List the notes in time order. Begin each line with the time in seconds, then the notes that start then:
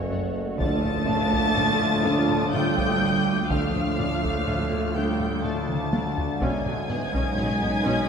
Already playing: F#1 F#2 F#3 A3 C#4 F#4 A4 C#5 F#5 C#6
0.12 F#2
0.60 D2 A2 D3 F3 A3 D4 F4 A4 F5 A5 D6 D#6 A6, taiko
0.85 taiko low-mid
1.09 D4, taiko low-mid
1.33 taiko
1.57 D3, taiko low-mid
1.82 taiko low-mid
2.06 D3
2.29 taiko low-mid
2.54 D3 G3 G5 G6, taiko low-mid
2.78 taiko
3.03 D3
3.49 D2 A2 D3 F3 A3 D4 F4 A4 F5 F6, taiko
3.75 taiko low-mid
3.99 D4, taiko low-mid
4.24 taiko
4.48 D3, taiko low-mid
4.72 taiko low-mid
4.95 D3 G3 G5 G6
5.20 taiko low-mid
5.43 A2 D3 F3 A3 D4 A5 A6, taiko low-mid
5.69 taiko mid
5.93 D3, taiko high
6.18 taiko low
6.39 B1 F#2 B2 F#3 G#3 C#4 D#4 C#5 D#5 F#5 G#5 D#6 G#6, taiko
6.66 B1 F#3, taiko low-mid
6.90 B3, taiko low-mid
7.14 B1 C#4, taiko
7.37 B1 B2 F#3 B6, taiko low-mid
7.62 B1 B3, taiko low-mid
7.86 B1 B2 C#4